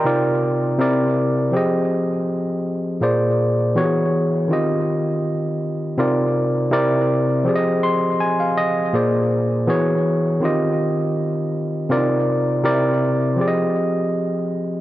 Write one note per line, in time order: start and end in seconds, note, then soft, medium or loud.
0.00 0.23 G5 medium
0.04 0.78 C3 medium
0.04 0.78 C4 medium
0.04 0.79 D#4 medium
0.04 0.79 F4 medium
0.04 0.79 A#4 medium
0.04 0.80 D5 medium
0.79 1.53 C3 medium
0.79 1.52 C4 medium
0.79 1.53 E4 medium
0.79 1.54 A#4 medium
0.79 1.54 D5 medium
1.52 2.97 F3 medium
1.52 2.98 C4 medium
1.52 2.98 G4 medium
1.52 2.99 G#4 medium
1.56 3.00 D#5 medium
3.01 3.75 A#2 medium
3.01 3.75 A#3 medium
3.01 3.76 G#4 medium
3.01 3.76 C5 medium
3.01 3.76 D5 medium
3.75 4.49 E3 medium
3.75 4.49 B3 medium
3.75 4.50 F#4 medium
3.75 3.83 G4 medium
3.75 4.50 C#5 medium
3.84 4.53 G#4 medium
4.48 5.94 D#3 medium
4.48 5.94 C4 medium
4.48 5.95 F4 medium
4.48 5.96 G4 medium
4.53 5.96 D#5 medium
5.98 6.70 C3 medium
5.98 6.70 C4 medium
5.98 6.72 D#4 medium
5.98 6.72 F4 medium
5.98 6.71 A#4 medium
5.98 6.72 D5 medium
6.71 7.45 C3 medium
6.71 7.44 C4 medium
6.71 7.46 E4 medium
6.71 7.46 A#4 medium
6.71 7.46 D5 medium
7.44 8.90 F3 medium
7.44 8.90 C4 medium
7.44 8.91 G4 medium
7.44 8.92 G#4 medium
7.49 7.54 D5 medium
7.55 8.56 D#5 medium
7.83 8.17 C6 medium
8.20 8.38 G#5 medium
8.40 8.56 F5 medium
8.57 8.91 D#5 medium
8.93 9.67 A#2 medium
8.93 9.68 A#3 medium
8.93 9.68 G#4 medium
8.93 9.68 C5 medium
8.93 9.68 D5 medium
9.67 10.41 E3 medium
9.67 10.42 B3 medium
9.67 10.42 F#4 medium
9.67 10.42 G#4 medium
9.67 10.43 C#5 medium
10.40 11.86 D#3 medium
10.40 11.87 C4 medium
10.40 11.87 F4 medium
10.40 11.88 G4 medium
10.45 11.88 D#5 medium
11.89 12.62 C3 medium
11.89 12.62 C4 medium
11.89 11.97 D4 soft
11.89 12.64 F4 medium
11.89 12.64 A#4 medium
11.89 12.64 D5 medium
11.97 12.67 D#4 medium
12.63 13.37 C3 medium
12.63 13.36 C4 medium
12.63 13.38 E4 medium
12.63 13.38 A#4 medium
12.63 13.39 D5 medium
13.36 14.81 F3 medium
13.36 14.81 C4 medium
13.36 14.81 G4 medium
13.36 14.81 G#4 medium
13.41 13.46 D5 medium
13.48 14.81 D#5 medium